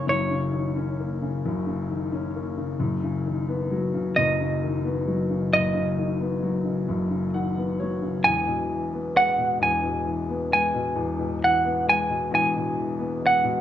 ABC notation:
X:1
M:6/8
L:1/16
Q:3/8=44
K:B
V:1 name="Clean electric guitar"
c8- c2 z2 | z6 d6 | d8 z4 | g4 f2 g4 g2- |
g2 f2 g2 g4 f2 |]
V:2 name="Grand piano"
z12 | z12 | z8 f2 c2 | z12 |
z12 |]
V:3 name="Grand piano" clef=bass
[F,,,F,,C,D,A,C] C, D, C A, C, [F,,,F,,] C, D, C A, C, | [F,,,F,,] C, D, B, F, C, [F,,,F,,] C, D, B, F, C, | [F,,,F,,] C, D, B, F, C, [F,,,F,,] C, D, B, F, C, | [E,,,E,,] B,, E, B, G, B,, [E,,,E,,] B,, E, B, G, B,, |
[E,,,E,,] B,, E, B, G, B,, [E,,,E,,] B,, E, B, G, B,, |]